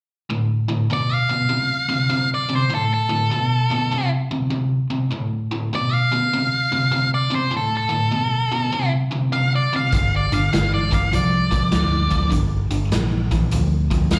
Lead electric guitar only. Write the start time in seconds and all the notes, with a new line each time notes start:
0.93 D5
1.13 F5
2.34 D5
2.56 C5
2.75 A4
2.94 A4
5.75 D5
5.93 F5
7.14 D5
7.35 C5
7.57 A4
7.77 A4
9.33 F5
9.56 D5
9.76 F5
9.96 F5
10.16 D5
10.34 F5
10.54 F5
10.74 D5
10.94 F5
11.15 D5
14.14 F5